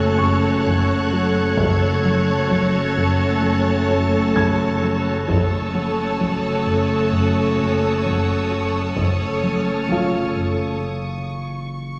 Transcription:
0.00 1.54 F#1 medium
0.00 1.54 F#2 medium
0.00 1.54 A3 medium
0.00 1.54 C#4 medium
0.00 1.55 F#4 medium
0.00 1.54 A4 medium
0.00 0.15 B4 soft
0.00 1.54 C#5 medium
0.00 1.55 F#5 medium
0.00 1.54 A5 medium
0.00 1.55 A5 medium
0.00 0.15 B5 medium
0.00 4.78 C#6 soft
0.00 3.85 F#6 medium
0.00 3.52 G#6 medium
0.19 0.48 F#2 medium
0.19 2.92 C#6 soft
0.66 0.94 F#2 medium
0.66 taiko medium
1.13 1.40 F#3 medium
1.57 5.23 F#1 medium
1.57 5.24 F#1 medium
1.57 5.23 F#2 medium
1.57 1.87 F#2 medium
1.57 5.13 A3 medium
1.57 5.13 C#4 medium
1.57 5.24 F#4 medium
1.57 5.23 A4 medium
1.57 5.23 C#5 medium
1.57 5.24 F#5 medium
1.57 5.24 A5 medium
1.57 taiko medium
2.05 2.33 F#3 medium
2.50 2.79 F#3 medium
2.50 taiko medium
2.98 3.25 F#2 medium
3.43 3.70 F#2 medium
3.52 4.77 A6 medium
3.90 4.17 F#2 medium
4.35 4.63 F#2 medium
4.35 7.08 G#6 medium
4.35 taiko medium
4.83 5.10 F#3 medium
5.27 8.93 F#1 medium
5.27 5.55 F#2 medium
5.27 8.93 F#2 medium
5.27 8.94 A3 medium
5.27 8.94 C#4 medium
5.27 8.94 F#4 medium
5.27 8.92 A4 medium
5.27 8.92 C#5 medium
5.27 8.93 F#5 medium
5.27 8.93 A5 medium
5.27 8.94 A5 medium
5.27 11.99 C#6 soft
5.27 11.24 D#6 soft
5.27 9.06 E6 soft
5.27 taiko medium
5.75 6.02 F#3 medium
6.20 6.48 F#3 medium
6.20 taiko medium
6.66 6.94 F#2 medium
7.12 7.40 F#2 medium
7.59 7.87 F#2 soft
8.05 8.33 F#2 soft
8.05 taiko medium
8.51 8.79 F#3 medium
8.96 10.78 F#1 medium
8.96 11.99 F#1 medium
8.96 10.78 F#2 soft
8.96 9.25 F#2 medium
8.96 10.78 A3 soft
8.96 10.78 C#4 soft
8.96 10.77 A4 soft
8.96 10.78 C#5 soft
8.96 10.77 A5 medium
8.96 10.79 A5 soft
8.96 taiko medium
9.06 10.31 F6 soft
9.43 9.71 F#3 soft
9.89 10.17 F#3 soft
9.89 10.79 F4 soft
9.89 10.79 F5 soft
9.89 taiko medium
10.36 10.64 F#2 soft

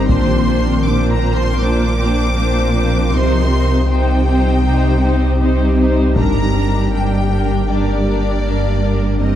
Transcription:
0.00 0.11 G1 medium
0.00 3.11 C4 medium
0.09 3.14 A#1 medium
0.09 0.76 A#2 medium
0.09 3.13 F3 medium
0.09 0.46 D4 medium
0.09 3.13 F4 medium
0.09 3.09 A#4 medium
0.09 0.46 C5 medium
0.09 0.84 C6 medium
0.09 taiko soft
0.47 0.84 D4 soft
0.47 0.84 C5 soft
0.85 1.52 A#2 medium
0.85 1.22 D4 soft
0.85 1.22 C5 soft
0.85 1.11 D6 medium
1.11 1.36 A#5 medium
1.23 1.60 D4 soft
1.23 1.60 C5 soft
1.36 1.61 C6 medium
1.61 2.28 A#2 medium
1.61 1.98 D4 soft
1.61 1.98 C5 medium
1.61 3.13 D6 medium
1.99 2.36 D4 soft
1.99 2.36 C5 soft
2.37 3.04 A#2 medium
2.37 2.74 D4 medium
2.37 2.74 C5 soft
2.75 3.12 D4 soft
2.75 3.12 C5 soft
3.12 6.18 C2 medium
3.12 3.80 C3 medium
3.12 9.19 G3 medium
3.12 6.13 C4 medium
3.12 6.17 D#4 medium
3.12 3.50 D#4 soft
3.12 9.19 G4 medium
3.12 3.50 C5 medium
3.12 3.89 C6 medium
3.51 3.88 D#4 soft
3.51 3.88 C5 soft
3.89 4.56 C3 medium
3.89 4.26 D#4 soft
3.89 4.25 C5 soft
3.89 5.79 G5 medium
4.27 4.64 D#4 soft
4.27 4.64 C5 soft
4.64 5.32 C3 medium
4.64 5.02 D#4 medium
4.64 5.01 C5 medium
5.03 5.39 D#4 soft
5.03 5.40 C5 soft
5.41 6.08 C3 medium
5.41 5.78 D#4 soft
5.41 5.78 C5 soft
5.79 6.16 D#4 soft
5.79 6.16 C5 medium
6.16 9.36 G1 medium
6.16 6.84 G2 medium
6.16 9.36 A#3 medium
6.16 9.20 D4 medium
6.16 6.53 D4 medium
6.16 6.53 A#4 soft
6.16 6.89 A#5 medium
6.16 taiko medium
6.54 6.91 D4 soft
6.54 6.91 A#4 soft
6.92 7.60 G2 medium
6.92 7.30 D4 soft
6.92 7.30 A#4 soft
6.92 7.69 G5 medium
7.31 7.67 D4 soft
7.31 7.67 A#4 soft
7.68 8.36 G2 medium
7.68 8.05 D4 soft
7.68 8.05 A#4 soft
7.68 9.20 D5 medium
8.06 8.43 D4 soft
8.06 8.43 A#4 soft
8.44 9.11 G2 medium
8.44 8.81 D4 soft
8.44 8.81 A#4 soft
8.82 9.20 D4 soft
8.82 9.19 A#4 soft
9.20 9.36 G2 medium
9.20 9.36 G3 medium
9.20 9.36 C4 medium
9.20 9.36 C4 soft
9.20 9.36 G4 medium
9.20 9.36 A#4 soft
9.20 9.36 D#5 medium

